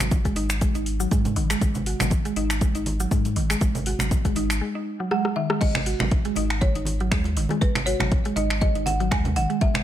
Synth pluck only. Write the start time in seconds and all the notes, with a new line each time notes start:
0.00 F#3
0.25 G#3
0.36 D#4
0.61 G#3
0.75 D#4
1.00 F#3
1.11 G#3
1.36 D#3
1.50 G#3
1.61 G#3
1.87 F#4
2.00 F#3
2.25 G#3
2.37 D#4
2.62 G#3
2.75 D#4
3.00 F#3
3.12 G#3
3.36 D#3
3.50 G#3
3.62 G#3
3.87 F#4
4.00 F#3
4.25 G#3
4.36 D#4
4.61 G#3
4.75 D#4
5.00 F#3
5.11 G#3
5.36 D#3
5.50 G#3
5.61 G#3
5.86 F#4
6.00 F#3
6.25 G#3
6.37 D#4
6.62 G#3
6.76 D#4
7.01 F#3
7.12 G#3
7.37 D#3
7.51 G#3
7.62 G#3
7.87 F#4
8.01 F#3
8.26 G#3
8.37 D#4
8.62 G#3
8.75 D#4
9.00 F#3
9.11 G#3
9.36 D#3
9.50 G#3
9.61 G#3